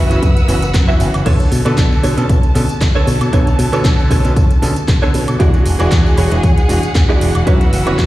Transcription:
Already playing: clean electric guitar E4 F#4 B4 E5, violin section B4 F#5 E6
0.10 picked electric bass F#1, electric grand piano E3 B3 C#4 F#4, closed hi-hat, tambourine
0.23 picked electric bass F#2, kick, closed hi-hat, tambourine
0.37 closed hi-hat, tambourine
0.48 picked electric bass F#1, electric grand piano E3 B3 C#4 F#4, open hi-hat, tambourine
0.62 closed hi-hat, tambourine
0.74 picked electric bass F#2, muted clean electric guitar stroke, kick, clap, closed hi-hat, tambourine
0.88 electric grand piano E3 B3 C#4 F#4, clean electric guitar E4 F#4 B4 E5, tambourine
1.00 picked electric bass F#1, open hi-hat, tambourine
1.14 picked electric bass F#1, closed hi-hat, tambourine, high woodblock
1.25 picked electric bass B1, electric grand piano D3 B3 A4 C#5, clean electric guitar D4 A4 B4 C#5, violin section A5, kick, closed hi-hat, crash, tambourine
1.40 closed hi-hat, tambourine
1.51 picked electric bass B2, muted clean electric guitar stroke, open hi-hat, tambourine
1.65 picked electric bass B2, electric grand piano D3 B3 A4, clean electric guitar D4 A4 B4 D5, closed hi-hat, tambourine, high woodblock
1.78 picked electric bass B1, kick, clap, closed hi-hat, tambourine
1.91 muted clean electric guitar stroke, tambourine
2.03 picked electric bass B2, clean electric guitar D4 A4 B4 C#5, open hi-hat, tambourine
2.17 picked electric bass B2, electric grand piano D3 B3 C#4 A4, closed hi-hat, tambourine
2.29 picked electric bass B1, kick, closed hi-hat, tambourine
2.43 closed hi-hat, tambourine
2.54 picked electric bass B2, electric grand piano D3 B3 C#4 A4, open hi-hat, tambourine
2.69 muted picked electric bass stroke, closed hi-hat, tambourine
2.81 picked electric bass B1, muted clean electric guitar stroke, kick, clap, closed hi-hat, tambourine
2.94 electric grand piano D3 B3 A4 C#5, clean electric guitar D4 A4 B4 C#5, tambourine
3.07 picked electric bass B2, open hi-hat, tambourine
3.21 picked electric bass B2, closed hi-hat, tambourine, high woodblock
3.32 picked electric bass B1, electric grand piano D3 B3 A4 C#5, clean electric guitar D4 A4 B4 C#5, kick, closed hi-hat, tambourine
3.47 closed hi-hat, tambourine
3.59 picked electric bass B2, muted clean electric guitar stroke, open hi-hat, tambourine
3.72 picked electric bass B2, electric grand piano D3 B3 A4 C#5, clean electric guitar D4 A4 B4 C#5, closed hi-hat, tambourine, high woodblock
3.85 picked electric bass B1, kick, clap, closed hi-hat, tambourine
3.99 muted clean electric guitar stroke, tambourine
4.11 picked electric bass B2, clean electric guitar D4 A4 B4 C#5, kick, open hi-hat, tambourine
4.24 picked electric bass B2, electric grand piano D3 B3 C#4 A4, closed hi-hat, tambourine
4.36 picked electric bass B1, kick, closed hi-hat, tambourine
4.51 closed hi-hat, tambourine
4.62 picked electric bass B2, electric grand piano D3 B3 C#4 A4, open hi-hat, tambourine
4.76 muted picked electric bass stroke, closed hi-hat, tambourine
4.88 picked electric bass B1, muted clean electric guitar stroke, kick, clap, closed hi-hat, tambourine
5.02 electric grand piano D3 B3 A4 C#5, clean electric guitar D4 A4 B4 C#5, tambourine
5.14 picked electric bass B2, open hi-hat, tambourine
5.28 picked electric bass B2, closed hi-hat, tambourine, high woodblock
5.39 picked electric bass E2, electric grand piano E3 G#3 D4 F#4, clean electric guitar E4 F#4 G#4 D5, violin section G#4 F#5, kick, closed hi-hat, tambourine
5.54 closed hi-hat, tambourine
5.66 picked electric bass E1, muted clean electric guitar stroke, open hi-hat, tambourine
5.79 picked electric bass E1, electric grand piano E3 G#3 D4 F#4, clean electric guitar E4 F#4 G#4 D5, closed hi-hat, tambourine, high woodblock
5.92 picked electric bass E2, kick, clap, closed hi-hat, tambourine
6.05 muted clean electric guitar stroke, tambourine
6.17 picked electric bass E1, clean electric guitar E4 F#4 G#4 C#5, open hi-hat, tambourine
6.31 picked electric bass E1, electric grand piano E3 G#3 D4 F#4, closed hi-hat, tambourine
6.43 picked electric bass E2, kick, closed hi-hat, tambourine
6.58 closed hi-hat, tambourine
6.68 picked electric bass E1, electric grand piano E3 G#3 D4 F#4, open hi-hat, tambourine
6.83 muted picked electric bass stroke, closed hi-hat, tambourine
6.95 picked electric bass E2, muted clean electric guitar stroke, kick, clap, closed hi-hat, tambourine
7.08 electric grand piano E3 G#3 D4 F#4, clean electric guitar E4 F#4 G#4 D5, tambourine
7.21 picked electric bass E1, open hi-hat, tambourine
7.35 picked electric bass E1, closed hi-hat, tambourine, high woodblock
7.46 picked electric bass F#2, electric grand piano E3 B3 C#4 F#4, clean electric guitar E4 F#4 B4 C#5, violin section B4 E6, kick, closed hi-hat, tambourine
7.61 closed hi-hat, tambourine
7.72 picked electric bass F#1, muted clean electric guitar stroke, open hi-hat, tambourine
7.86 picked electric bass F#1, electric grand piano E3 B3 C#4 F#4, clean electric guitar E4 F#4 B4 C#5, closed hi-hat, tambourine, high woodblock
7.99 picked electric bass F#2, kick, clap, closed hi-hat, tambourine

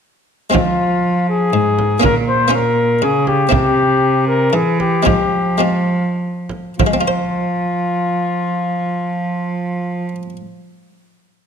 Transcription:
0.50 harpsichord F3 G#3 C4 F4
0.54 cello F3, cornet F4, frame drum
1.29 cornet G#4
1.53 harpsichord G#2, cello G#2
1.79 frame drum
2.00 harpsichord A#2 A#3 C#4 F4, cello A#2
2.04 cornet A#4, frame drum
2.28 cornet C5
2.48 harpsichord A#3 C#4 F4
2.54 cornet A#4
3.02 harpsichord C#3, cello C#3, cornet G#4
3.27 cornet G4, frame drum
3.49 harpsichord C3 C4 E4, cello C3, cornet G4, frame drum
4.27 cornet A#4
4.53 harpsichord E3, cello E3, cornet G#4
4.80 cornet G4, frame drum
5.03 harpsichord F3 G#3 C4 F4, cornet G4, frame drum
5.07 cello F3
5.58 harpsichord G#3 C4 F4
5.62 cornet F4
6.49 frame drum
6.78 cello F3, harpsichord F3, cornet F4, frame drum
6.87 harpsichord G#3
6.94 harpsichord C4
7.01 harpsichord F4
7.08 harpsichord C5

